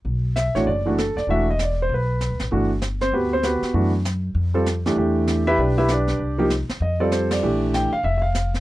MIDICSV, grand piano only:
0, 0, Header, 1, 2, 480
1, 0, Start_track
1, 0, Key_signature, 1, "major"
1, 0, Tempo, 306905
1, 84, Time_signature, 4, 2, 24, 8
1, 13452, End_track
2, 0, Start_track
2, 0, Title_t, "Grand piano"
2, 0, Program_c, 0, 0
2, 560, Note_on_c, 0, 76, 70
2, 851, Note_off_c, 0, 76, 0
2, 860, Note_on_c, 0, 73, 76
2, 873, Note_on_c, 0, 52, 51
2, 875, Note_on_c, 0, 57, 49
2, 879, Note_on_c, 0, 62, 48
2, 879, Note_on_c, 0, 66, 59
2, 1033, Note_off_c, 0, 52, 0
2, 1034, Note_off_c, 0, 57, 0
2, 1036, Note_off_c, 0, 62, 0
2, 1036, Note_off_c, 0, 66, 0
2, 1039, Note_off_c, 0, 73, 0
2, 1047, Note_on_c, 0, 74, 77
2, 1335, Note_off_c, 0, 74, 0
2, 1338, Note_on_c, 0, 52, 54
2, 1349, Note_on_c, 0, 62, 56
2, 1351, Note_on_c, 0, 57, 57
2, 1358, Note_on_c, 0, 66, 59
2, 1506, Note_off_c, 0, 52, 0
2, 1512, Note_off_c, 0, 62, 0
2, 1513, Note_off_c, 0, 57, 0
2, 1516, Note_off_c, 0, 66, 0
2, 1541, Note_on_c, 0, 69, 65
2, 1823, Note_off_c, 0, 69, 0
2, 1828, Note_on_c, 0, 74, 73
2, 2004, Note_off_c, 0, 74, 0
2, 2015, Note_on_c, 0, 52, 51
2, 2019, Note_on_c, 0, 57, 47
2, 2028, Note_on_c, 0, 62, 49
2, 2032, Note_on_c, 0, 66, 59
2, 2041, Note_on_c, 0, 76, 86
2, 2279, Note_off_c, 0, 52, 0
2, 2282, Note_off_c, 0, 57, 0
2, 2286, Note_off_c, 0, 62, 0
2, 2288, Note_off_c, 0, 66, 0
2, 2314, Note_off_c, 0, 76, 0
2, 2351, Note_on_c, 0, 75, 70
2, 2507, Note_off_c, 0, 75, 0
2, 2542, Note_on_c, 0, 74, 63
2, 2805, Note_off_c, 0, 74, 0
2, 2851, Note_on_c, 0, 72, 75
2, 2998, Note_off_c, 0, 72, 0
2, 3037, Note_on_c, 0, 71, 68
2, 3814, Note_off_c, 0, 71, 0
2, 3938, Note_on_c, 0, 52, 55
2, 3938, Note_on_c, 0, 57, 51
2, 3942, Note_on_c, 0, 62, 55
2, 3946, Note_on_c, 0, 66, 62
2, 4202, Note_off_c, 0, 52, 0
2, 4202, Note_off_c, 0, 57, 0
2, 4204, Note_off_c, 0, 62, 0
2, 4206, Note_off_c, 0, 66, 0
2, 4716, Note_on_c, 0, 72, 84
2, 4717, Note_on_c, 0, 60, 62
2, 4890, Note_off_c, 0, 72, 0
2, 4891, Note_off_c, 0, 60, 0
2, 4903, Note_on_c, 0, 67, 48
2, 4906, Note_on_c, 0, 71, 61
2, 4911, Note_on_c, 0, 59, 48
2, 4911, Note_on_c, 0, 66, 49
2, 5185, Note_off_c, 0, 67, 0
2, 5187, Note_off_c, 0, 71, 0
2, 5190, Note_off_c, 0, 59, 0
2, 5190, Note_off_c, 0, 66, 0
2, 5212, Note_on_c, 0, 72, 81
2, 5230, Note_on_c, 0, 60, 62
2, 5370, Note_on_c, 0, 71, 61
2, 5378, Note_off_c, 0, 72, 0
2, 5384, Note_on_c, 0, 67, 51
2, 5385, Note_on_c, 0, 59, 47
2, 5385, Note_on_c, 0, 66, 51
2, 5388, Note_off_c, 0, 60, 0
2, 5825, Note_off_c, 0, 67, 0
2, 5832, Note_off_c, 0, 66, 0
2, 5844, Note_on_c, 0, 57, 48
2, 5846, Note_on_c, 0, 52, 53
2, 5849, Note_on_c, 0, 62, 46
2, 5856, Note_on_c, 0, 66, 59
2, 6093, Note_off_c, 0, 71, 0
2, 6101, Note_off_c, 0, 59, 0
2, 6115, Note_off_c, 0, 57, 0
2, 6116, Note_off_c, 0, 52, 0
2, 6117, Note_off_c, 0, 62, 0
2, 6121, Note_off_c, 0, 66, 0
2, 7104, Note_on_c, 0, 55, 59
2, 7109, Note_on_c, 0, 60, 58
2, 7113, Note_on_c, 0, 65, 54
2, 7118, Note_on_c, 0, 69, 68
2, 7270, Note_off_c, 0, 55, 0
2, 7273, Note_off_c, 0, 60, 0
2, 7275, Note_off_c, 0, 65, 0
2, 7278, Note_off_c, 0, 69, 0
2, 7599, Note_on_c, 0, 52, 62
2, 7599, Note_on_c, 0, 57, 57
2, 7603, Note_on_c, 0, 62, 58
2, 7607, Note_on_c, 0, 67, 64
2, 7751, Note_off_c, 0, 52, 0
2, 7758, Note_off_c, 0, 57, 0
2, 7760, Note_off_c, 0, 62, 0
2, 7762, Note_off_c, 0, 67, 0
2, 7774, Note_on_c, 0, 52, 50
2, 7784, Note_on_c, 0, 57, 48
2, 7786, Note_on_c, 0, 62, 50
2, 7794, Note_on_c, 0, 67, 59
2, 8489, Note_off_c, 0, 52, 0
2, 8493, Note_off_c, 0, 57, 0
2, 8494, Note_off_c, 0, 62, 0
2, 8498, Note_off_c, 0, 67, 0
2, 8558, Note_on_c, 0, 64, 80
2, 8558, Note_on_c, 0, 76, 96
2, 8561, Note_on_c, 0, 67, 77
2, 8566, Note_on_c, 0, 71, 81
2, 8724, Note_off_c, 0, 67, 0
2, 8728, Note_off_c, 0, 71, 0
2, 8729, Note_off_c, 0, 64, 0
2, 8730, Note_off_c, 0, 76, 0
2, 8744, Note_on_c, 0, 74, 64
2, 8747, Note_on_c, 0, 67, 55
2, 8753, Note_on_c, 0, 62, 52
2, 9012, Note_off_c, 0, 67, 0
2, 9024, Note_off_c, 0, 74, 0
2, 9029, Note_off_c, 0, 62, 0
2, 9036, Note_on_c, 0, 67, 67
2, 9039, Note_on_c, 0, 76, 83
2, 9043, Note_on_c, 0, 64, 67
2, 9049, Note_on_c, 0, 71, 68
2, 9208, Note_off_c, 0, 67, 0
2, 9209, Note_off_c, 0, 76, 0
2, 9212, Note_off_c, 0, 64, 0
2, 9215, Note_off_c, 0, 71, 0
2, 9248, Note_on_c, 0, 62, 57
2, 9249, Note_on_c, 0, 67, 57
2, 9250, Note_on_c, 0, 71, 58
2, 9254, Note_on_c, 0, 74, 71
2, 9676, Note_off_c, 0, 71, 0
2, 9950, Note_off_c, 0, 62, 0
2, 9951, Note_off_c, 0, 67, 0
2, 9954, Note_off_c, 0, 74, 0
2, 9983, Note_on_c, 0, 53, 72
2, 9991, Note_on_c, 0, 58, 65
2, 9991, Note_on_c, 0, 63, 67
2, 10001, Note_on_c, 0, 67, 78
2, 10148, Note_off_c, 0, 53, 0
2, 10152, Note_off_c, 0, 58, 0
2, 10152, Note_off_c, 0, 63, 0
2, 10157, Note_off_c, 0, 67, 0
2, 10667, Note_on_c, 0, 75, 68
2, 10944, Note_off_c, 0, 75, 0
2, 10951, Note_on_c, 0, 74, 71
2, 10952, Note_on_c, 0, 55, 60
2, 10956, Note_on_c, 0, 60, 60
2, 10962, Note_on_c, 0, 65, 55
2, 10966, Note_on_c, 0, 69, 69
2, 11124, Note_off_c, 0, 74, 0
2, 11142, Note_on_c, 0, 72, 63
2, 11421, Note_off_c, 0, 72, 0
2, 11435, Note_on_c, 0, 74, 76
2, 11572, Note_off_c, 0, 55, 0
2, 11574, Note_off_c, 0, 60, 0
2, 11577, Note_off_c, 0, 65, 0
2, 11579, Note_off_c, 0, 69, 0
2, 11621, Note_on_c, 0, 52, 51
2, 11623, Note_on_c, 0, 57, 47
2, 11629, Note_on_c, 0, 62, 45
2, 11630, Note_on_c, 0, 67, 60
2, 11874, Note_off_c, 0, 74, 0
2, 12110, Note_on_c, 0, 79, 78
2, 12329, Note_off_c, 0, 52, 0
2, 12330, Note_off_c, 0, 57, 0
2, 12333, Note_off_c, 0, 62, 0
2, 12333, Note_off_c, 0, 67, 0
2, 12385, Note_off_c, 0, 79, 0
2, 12398, Note_on_c, 0, 77, 81
2, 12566, Note_off_c, 0, 77, 0
2, 12579, Note_on_c, 0, 76, 72
2, 12762, Note_off_c, 0, 76, 0
2, 12785, Note_on_c, 0, 76, 54
2, 12818, Note_off_c, 0, 76, 0
2, 12854, Note_on_c, 0, 77, 73
2, 13302, Note_off_c, 0, 77, 0
2, 13452, End_track
0, 0, End_of_file